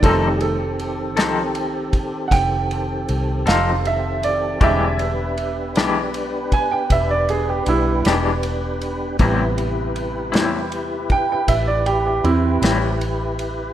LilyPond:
<<
  \new Staff \with { instrumentName = "Upright piano" } { \time 12/8 \key a \minor \tempo 4. = 52 a'8 <gis' a'>2 r8 <fis'' g''>4. f''8 e''8 d''8 | e''2 r8 gis''16 g''16 e''16 d''16 gis'16 g'16 <g e'>8 r4. | r2 r8 g''16 g''16 e''16 d''16 g'16 g'16 <c' e'>8 r4. | }
  \new Staff \with { instrumentName = "Upright piano" } { \clef bass \time 12/8 \key a \minor <ees g a>8 r1 r4. | <d g gis>8 r1 r4. | <c g b>1. | }
  \new Staff \with { instrumentName = "Tonewheel organ" } { \time 12/8 \key a \minor <ees c' g' a'>1. | <c' d' gis'' a''>8 <b d' g' b'>1~ <b d' g' b'>4. | <e' g' b'>1. | }
  \new Staff \with { instrumentName = "Clean electric guitar" } { \time 12/8 \key a \minor <f c' ees' a'>8 r4 <f c' ees' a'>8 r2 r8 <f c' ees' a'>8 r4 | <e gis d' g'>8 r4 <e gis d' g'>8 r2 r8 <e gis d' g'>8 r4 | <a, g c' e'>8 r4 <a, g c' e'>8 r2 r8 <a, g c' e'>8 r4 | }
  \new Staff \with { instrumentName = "Fingered electric bass" } { \clef bass \time 12/8 \key a \minor f,,4. c,4. f,,4 c,8 f,,4. | e,,4. b,,4. e,,4 b,,8 e,,4. | a,,4. e,4. a,,4 e,8 a,,4. | }
  \new DrumStaff \with { instrumentName = "Drums" } \drummode { \time 12/8 <bd cymr>8 cymr8 cymr8 <cymr sn>8 cymr8 <bd cymr>8 <bd cymr sn>8 cymr8 cymr8 <cymr sn>8 cymr8 cymr8 | <bd cymr>8 cymr8 cymr8 <cymr sn>8 cymr8 <bd cymr>8 <bd cymr>8 cymr8 cymr8 <cymr sn>8 cymr8 cymr8 | <bd cymr>8 cymr8 cymr8 <cymr sn>8 cymr8 <bd cymr>8 <bd cymr>8 cymr8 cymr8 <cymr sn>8 cymr8 cymr8 | }
>>